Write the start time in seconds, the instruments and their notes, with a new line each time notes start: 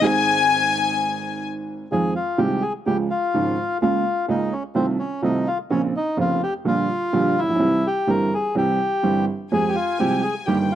0.01 upright piano G#1 G#2 D#3 G#3 C4 G#4, violin section G#5
1.92 upright piano F2 D#3 F3 G#3 C4 F4, bandoneon G#4
2.16 bandoneon F4
2.38 upright piano C2 C3 D#3 G#3 C4 F4, bandoneon G4
2.62 bandoneon G#4
2.86 upright piano C#2 C#3 F3 G#3 F4, bandoneon G4
3.11 bandoneon F4
3.34 upright piano G#1 G#2 C#3 F3 G#3 F4
3.82 upright piano C#2 C#3 G#3 A#3 F4, bandoneon F4
4.28 upright piano C#2 C#3 G#3 A#3 F4, bandoneon D#4
4.53 bandoneon C#4
4.75 upright piano C2 C3 D#3 A3 C4 F4, bandoneon C4
4.99 bandoneon C#4
5.23 upright piano C2 C3 D#3 A3 C4 F4, bandoneon D#4
5.47 bandoneon F4
5.70 upright piano A#1 A#2 C#3 A#3 C4 F4, bandoneon C#4
5.97 bandoneon D#4
6.17 upright piano F1 F2 C#3 A#3 C4 F4, bandoneon F4
6.43 bandoneon G4
6.65 upright piano A#1 A#2 D3 G3 A#3 G4, bandoneon F4
7.13 upright piano A#1 A#2 D3 G3 A#3 G4
7.39 upright piano A1, bandoneon E4
7.49 upright piano A#1
7.55 upright piano B1
7.59 upright piano C2 C3 E3 G3 C4 G4
7.87 bandoneon G4
8.07 upright piano G1 G2 E3 G3 C4 G4, bandoneon A#4
8.34 bandoneon G#4
8.55 upright piano C2 C3 E3 G3 C4 G4, bandoneon G4
9.03 upright piano G1 G2 E3 G3 C4 G4
9.52 upright piano F2 F3 G#3 C4 G4, bandoneon G#4, violin section G#5
9.69 bandoneon G4
9.75 bandoneon F4
10.00 upright piano C2 C3 F3 G#3 C4 G4, bandoneon G4
10.23 bandoneon G#4
10.46 upright piano G1 G2 D#3 G3 A#3 G4, bandoneon G4, violin section G5
10.72 bandoneon F4